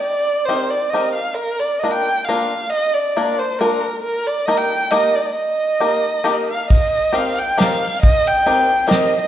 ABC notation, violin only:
X:1
M:3/4
L:1/16
Q:"Swing" 1/4=136
K:Eb
V:1 name="Violin"
d4 c2 d2 e2 f2 | B2 d2 e g3 f4 | e2 d4 c2 B3 z | B2 d2 e g3 e2 d/2 e/2 d |
e8- e2 f2 | [K:Cm] e4 f2 g2 f4 | e2 g6 e3 z |]